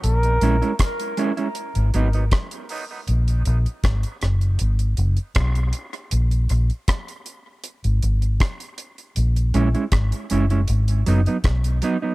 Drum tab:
HH |xxxxxxxxxxxxxxo-|xxxxxxxxxxxxxxxx|xxxxxxx-xxxxxxxx|xxxxxxxxxxxxxxx-|
SD |----r-------r---|----r-r-----r---|----r-------r---|----r-------r---|
BD |----o-------o---|----o-------o---|----o-------o---|----o-------o---|